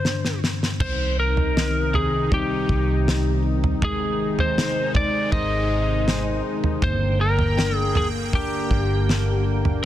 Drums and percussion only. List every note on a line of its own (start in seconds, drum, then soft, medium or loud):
0.05 snare medium
0.25 snare medium
0.44 snare medium
0.63 snare medium
0.80 kick medium
0.80 floor tom loud
0.80 crash medium
1.37 floor tom medium
1.57 snare loud
1.94 floor tom medium
2.32 kick medium
2.32 floor tom medium
2.69 kick medium
3.08 snare medium
3.64 floor tom medium
3.82 kick medium
3.82 floor tom loud
4.39 floor tom medium
4.58 snare loud
4.95 kick medium
4.95 floor tom medium
5.32 kick loud
5.32 floor tom medium
6.08 snare medium
6.64 floor tom medium
6.82 kick loud
6.82 floor tom loud
7.39 floor tom medium
7.59 snare loud
7.95 floor tom medium
8.33 kick medium
8.33 floor tom medium
8.71 kick medium
9.09 snare medium
9.65 floor tom medium